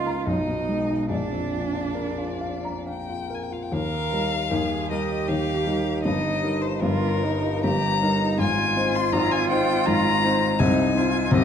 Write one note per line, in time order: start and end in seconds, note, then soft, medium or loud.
0.00 0.23 C#2 medium
0.00 0.30 C#3 soft
0.00 0.30 A#3 medium
0.00 0.30 D#4 soft
0.00 0.28 F4 medium
0.00 0.30 A#4 medium
0.00 0.19 D#5 medium
0.00 0.27 F5 medium
0.06 0.27 A#5 medium
0.27 1.08 B1 medium
0.27 1.11 D#4 medium
0.27 1.10 D#5 medium
0.48 0.82 B2 soft
0.69 1.03 G#3 soft
0.90 1.11 D#4 soft
1.10 3.67 A#1 soft
1.10 2.85 D4 medium
1.10 2.84 D5 medium
1.32 1.66 F2 soft
1.54 1.88 F3 soft
1.74 2.09 F4 soft
1.95 2.31 A#4 medium
2.18 2.56 F4 soft
2.41 2.79 F5 medium
2.65 3.01 A#5 medium
2.87 3.22 F5 soft
2.87 3.36 G5 medium
3.09 3.43 F4 soft
3.30 3.63 A#4 soft
3.35 3.44 G#5 medium
3.43 3.54 G5 medium
3.51 3.71 F4 soft
3.51 3.64 F5 medium
3.63 3.74 G5 medium
3.72 4.10 D#2 medium
3.72 4.10 D#3 medium
3.72 4.48 A#4 medium
3.72 4.90 F5 loud
4.12 4.48 G3 medium
4.12 4.48 D#4 soft
4.12 4.48 A#4 medium
4.51 4.89 D#2 medium
4.51 4.89 D#3 medium
4.51 4.91 G#4 medium
4.89 5.25 G3 medium
4.89 5.25 D#4 medium
4.89 6.04 G4 medium
4.89 5.25 A#4 medium
4.89 5.30 D#5 medium
5.28 5.65 D#2 medium
5.28 5.65 D#3 medium
5.28 6.03 F5 loud
5.67 6.01 G3 medium
5.67 6.01 D#4 medium
5.67 6.01 A#4 medium
6.03 6.42 G1 medium
6.03 6.42 G2 medium
6.03 6.80 D#4 medium
6.03 6.63 D#5 loud
6.43 6.78 G3 medium
6.43 6.78 D#4 medium
6.43 6.78 A#4 medium
6.61 6.82 C5 medium
6.80 7.21 G1 medium
6.80 7.21 G2 medium
6.80 7.24 F4 medium
6.80 7.63 A#4 loud
7.22 7.60 G3 medium
7.22 7.65 D#4 medium
7.22 7.60 D#4 medium
7.22 7.60 A#4 medium
7.63 8.01 G1 medium
7.63 8.01 G2 medium
7.63 8.01 G4 medium
7.63 8.38 A#5 loud
8.01 8.35 G3 medium
8.01 8.40 D#4 medium
8.01 8.35 D#4 medium
8.01 8.36 A#4 medium
8.38 8.75 G#1 medium
8.38 8.74 G#2 medium
8.38 10.58 F4 loud
8.38 8.97 G#5 loud
8.76 9.10 C4 medium
8.76 9.10 D#4 medium
8.76 9.10 C5 medium
8.96 9.14 C6 loud
9.12 9.49 G#1 medium
9.12 9.49 G#2 medium
9.12 9.33 A#5 loud
9.31 9.49 G#5 loud
9.50 9.83 C4 medium
9.50 9.84 D#4 medium
9.50 9.84 C5 medium
9.50 9.87 G5 loud
9.86 10.22 G#1 medium
9.86 10.22 G#2 medium
9.86 10.61 A#5 loud
10.23 10.55 C4 medium
10.23 10.56 D#4 medium
10.23 10.56 C5 medium
10.59 10.94 C2 medium
10.59 10.95 C3 medium
10.59 10.98 D#4 loud
10.59 11.33 G#5 loud
10.95 11.28 C4 medium
10.95 11.28 D#4 medium
10.95 11.35 F4 medium
10.95 11.28 C5 medium
11.31 11.44 C2 medium
11.31 11.44 C3 medium
11.31 11.44 G4 loud
11.31 11.44 D#5 loud